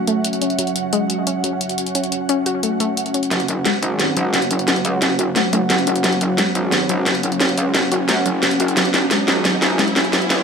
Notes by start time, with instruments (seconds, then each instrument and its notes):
Already playing: analog synth pad F#3 C#4 C#5 E5, ambient pad C#4 F#4 F#5
0.07 synth pluck A3, closed hi-hat
0.25 closed hi-hat
0.33 closed hi-hat
0.42 synth pluck C#4, closed hi-hat
0.50 closed hi-hat
0.59 synth pluck F#3, closed hi-hat
0.67 closed hi-hat
0.76 closed hi-hat
0.93 synth pluck G#3, closed hi-hat
1.10 closed hi-hat
1.27 synth pluck C#4, closed hi-hat
1.44 synth pluck F#3, closed hi-hat
1.61 closed hi-hat
1.69 closed hi-hat
1.78 closed hi-hat
1.86 closed hi-hat
1.95 synth pluck C#4, closed hi-hat
2.04 closed hi-hat
2.12 closed hi-hat
2.29 synth pluck C#4, closed hi-hat
2.46 synth pluck F#4, closed hi-hat
2.63 synth pluck A3, closed hi-hat
2.80 synth pluck A3, closed hi-hat
2.97 closed hi-hat
3.06 closed hi-hat
3.14 synth pluck C#4, closed hi-hat
3.23 closed hi-hat
3.31 wobble bass F#1, analog synth pad F#3 C#4 C#5 F#5, synth pluck F#3, snare, closed hi-hat, riser
3.40 closed hi-hat
3.48 closed hi-hat
3.65 synth pluck G#3, snare, closed hi-hat
3.82 wobble bass G#1, closed hi-hat
4.00 synth pluck C#4, snare, closed hi-hat
4.17 synth pluck F#3, closed hi-hat
4.34 wobble bass F#1, snare, closed hi-hat
4.42 closed hi-hat
4.51 closed hi-hat
4.59 closed hi-hat
4.68 synth pluck C#4, snare, closed hi-hat
4.76 closed hi-hat
4.85 wobble bass C#2, closed hi-hat
5.02 wobble bass F#1, synth pluck C#4, snare, closed hi-hat
5.19 synth pluck F#4, closed hi-hat
5.36 synth pluck A3, snare, closed hi-hat
5.53 wobble bass F#1, synth pluck A3, closed hi-hat
5.70 snare, closed hi-hat
5.79 closed hi-hat
5.87 synth pluck C#4, closed hi-hat
5.96 closed hi-hat
6.04 wobble bass F#1, synth pluck F#3, snare, closed hi-hat
6.13 closed hi-hat
6.21 closed hi-hat
6.38 synth pluck G#3, snare, closed hi-hat
6.55 wobble bass G#1, closed hi-hat
6.72 synth pluck C#4, snare, closed hi-hat
6.89 synth pluck F#3, closed hi-hat
7.06 wobble bass F#1, snare, closed hi-hat
7.15 closed hi-hat
7.23 closed hi-hat
7.32 closed hi-hat
7.40 synth pluck C#4, snare, closed hi-hat
7.49 closed hi-hat
7.58 wobble bass C#2, closed hi-hat
7.75 wobble bass F#1, synth pluck C#4, snare, closed hi-hat
7.92 synth pluck F#4, closed hi-hat
8.09 wobble bass F#2, synth pluck A3, snare, closed hi-hat
8.26 wobble bass F#1, synth pluck F#3, closed hi-hat
8.43 snare, closed hi-hat
8.51 closed hi-hat
8.60 synth pluck F#4, closed hi-hat
8.68 closed hi-hat
8.77 wobble bass F#1, synth pluck F#3, analog synth pad G#5, snare, closed hi-hat
8.85 closed hi-hat
8.94 snare, closed hi-hat
9.11 synth pluck G#3, snare, closed hi-hat
9.28 wobble bass G#1, snare, closed hi-hat
9.45 synth pluck F#3, snare, closed hi-hat
9.62 snare, closed hi-hat
9.79 wobble bass F#1, synth pluck G#3, snare, closed hi-hat
9.88 closed hi-hat
9.96 snare, closed hi-hat
10.05 closed hi-hat
10.13 synth pluck F#3, snare, closed hi-hat
10.22 closed hi-hat
10.30 wobble bass C#2, snare, closed hi-hat